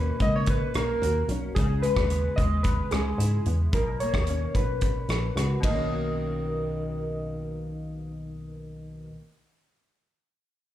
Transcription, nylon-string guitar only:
Already playing: B2 A#3 C#4 F#4
0.20 A#3
0.47 C#4
0.75 A#3
1.01 F#4
1.30 C#4
1.57 C#3
1.83 G#3
2.10 B3
2.38 G#3
2.64 B3
2.92 G#3
3.19 E4
3.47 B3
3.75 B2
4.02 A#3
4.29 C#4
4.83 C#4
5.37 F#4
5.60 B2
5.65 D#3 A#3
5.73 C#4 F#4

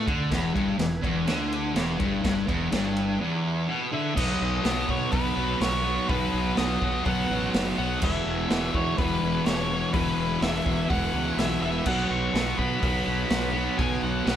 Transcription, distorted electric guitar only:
0.07 D3
0.31 E2
0.54 G2
0.78 E2
1.02 E2
1.26 D3
1.75 E2
1.99 G2
2.23 G2
2.47 E2
2.71 G2
3.20 E2
3.68 B2
3.92 D3
4.15 B2 F#3 B3
4.63 B2 F#3
4.67 B3
4.86 B3
4.91 F#3
5.11 B2 F#3
5.15 B3
5.35 F#3 B3
5.82 B3
5.87 F#3
6.07 B2 F#3 B3
6.55 B2 F#3 B3
6.79 B3
6.84 F#3
7.03 B2 F#3
7.08 B3
7.28 B3
7.32 F#3
7.76 B3
7.80 F#3
8.00 E2 B2 E3
8.48 E2 B2 E3
8.73 B2 E3
8.95 E2 B2
8.99 E3
9.20 E3
9.24 B2
9.69 E3
9.73 B2
9.91 E2 B2
9.96 E3
10.40 E2 B2
10.44 E3
10.64 E3
10.68 B2
10.88 E2 B2 E3
11.13 E3
11.17 B2
11.60 E3
11.65 B2
11.85 B2 F#3 B3
12.33 B2 F#3
12.37 B3
12.57 F#3 B3
12.81 B2 F#3
12.85 B3
13.05 F#3 B3
13.52 B3
13.57 F#3
13.77 B2 F#3
13.81 B3
14.25 B2 F#3 B3

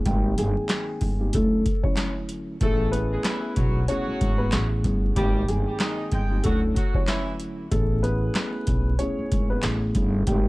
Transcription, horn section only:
2.62 A3 A4
3.11 G#3 G#4
3.26 E3 E4
3.56 F#3 F#4
3.88 F#3 F#4
5.16 G3 G4
5.67 G3 G4
5.79 D#3 D#4
6.12 G#3 G5
6.45 F#3 F#4
6.75 F#3 F#4
7.08 E3 E4

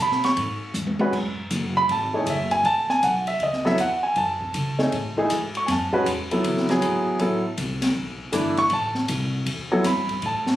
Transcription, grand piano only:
0.02 B5
0.25 C#6
1.00 G#3 C#4 F#4 B4
1.77 B5
1.92 A5
2.14 E3 A3 D#4 G#4 C#5
2.30 E5
2.51 G#5
2.65 A5
2.90 G#5
3.04 F#5
3.28 E5
3.43 D#5
3.65 F#3 B3 E4 A4 E5
3.80 F#5
4.03 G#5
4.18 A5
4.79 A3 D#4 G#4 C#5
5.17 E3 A3 D#4 G#4
5.57 C#6
5.66 G#5
5.71 A5
5.93 G#3 C#4 F#4 B4
6.31 F#3 B3 E4 A4
6.70 F#3 B3 E4 G#4
7.19 F#3 B3 E4 A4
8.32 E3 A3 D4 E4
8.59 C#6
8.73 A5
9.72 F#3 B3 E4 A4
9.86 B5
10.26 A5

